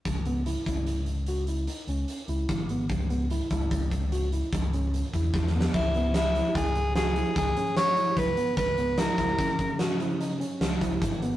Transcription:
<<
  \new Staff \with { instrumentName = "Soprano saxophone" } { \time 7/4 \key cis \dorian \tempo 4 = 148 r1. r4 | r1. r4 | e'4 e'4 gis'4 gis'4 gis'4 cis''4 b'4 | b'4 ais'2 r1 | }
  \new Staff \with { instrumentName = "Tine electric piano" } { \time 7/4 \key cis \dorian r8 b8 e'8 e'4 r8 fis'8 e'8 dis'8 cis'4 e'4 b8 | r8 b8 e'8 e'4 r8 fis'8 e'8 dis'8 cis'4 e'4 b8 | r8 b8 e'8 e'4 r8 fis'8 e'8 dis'8 cis'4 e'4 b8 | r8 b8 e'8 e'4 r8 fis'8 e'8 dis'8 cis'4 e'4 b8 | }
  \new Staff \with { instrumentName = "Analog synth bass" } { \clef bass \time 7/4 \key cis \dorian cis,4. cis,2. cis,8 r8 cis,8 gis,,4 | cis,4. cis,8 cis,8 cis,4. cis,4. e,8 e,4 | cis,2 cis,2 cis,8 r4. cis,8 r8 | cis,4. cis,8 cis8 cis2~ cis8 cis,8 cis,8 gis,,4 | }
  \new DrumStaff \with { instrumentName = "Drums" } \drummode { \time 7/4 <hh bd>8 hh8 hh8 <hh bd>8 hh8 hh8 hh8 hh8 hh8 hh8 hh8 hh8 <hh bd>8 hh8 | <hh bd>8 hh8 hh8 <hh bd>8 <hh bd>8 <hh bd>8 hh8 hh8 <hh bd>8 hh8 hh8 <hh bd>8 \tuplet 3/2 { <bd sn>8 sn8 sn8 } | <cymc bd>8 hh8 <hh sn>8 hh8 <hh bd>8 hh8 <hh sn>8 hh8 <hh bd>8 hh8 <hh sn>8 hh8 <hh bd>8 hh8 | <hh bd>8 hh8 <hh sn>8 <hh bd sn>8 <hh bd>8 <hh bd>8 <hh sn>8 hh8 hh8 hh8 <hh sn>8 <hh bd>8 <hh bd>8 hh8 | }
>>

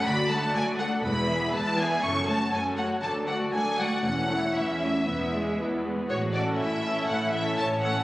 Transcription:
<<
  \new Staff \with { instrumentName = "Violin section" } { \time 4/4 \key a \major \tempo 4 = 121 b''8 a''8 gis''8 fis''8 b''4 a''8 gis''8 | cis'''8 a''8 gis''8 fis''8 a''8 fis''8 gis''8 fis''8 | fis''4 e''2 r4 | cis''8 d''8 e''4 fis''8 e''8 a''8 fis''8 | }
  \new Staff \with { instrumentName = "Violin section" } { \time 4/4 \key a \major <fis' d''>8 <a' fis''>8 <fis' d''>8 <a' fis''>8 b'8 <gis' e''>8 b'8 <gis' e''>8 | a'8 <fis' cis''>8 a'8 <fis' cis''>8 a'8 <fis' d''>8 a'8 <fis' d''>8 | <cis' a'>8 <e' cis''>8 e'8 cis'8 b8 gis8 b4 | fis'4 e'2 cis''4 | }
  \new Staff \with { instrumentName = "Viola section" } { \time 4/4 \key a \major <fis fis'>8 <a d'>8 <fis fis'>8 <a d'>8 <gis e'>8 <e b>8 <gis e'>8 <e b>8 | <fis cis'>8 a8 <fis cis'>8 a8 <fis d'>8 <a fis'>8 <fis d'>8 <a fis'>8 | <e cis'>8 <a e'>8 <e cis'>8 <a e'>8 <b e'>8 <gis gis'>8 <b e'>8 <gis gis'>8 | r8 <cis' a'>4 <cis' a'>4 <cis' a'>4 <cis' a'>8 | }
  \new Staff \with { instrumentName = "Cello section" } { \clef bass \time 4/4 \key a \major d,4 d,4 e,4 e,4 | fis,4 fis,4 d,4 d,4 | e,4 e,4 e,4 e,4 | a,4 a,4 a,4 a,4 | }
  \new Staff \with { instrumentName = "Double bass section" } { \clef bass \time 4/4 \key a \major d,4 r4 e,,4 r4 | fis,,4 r4 d,4 r4 | e,,4 r4 e,,4 r4 | a,,4 a,,4 a,,4 a,,4 | }
>>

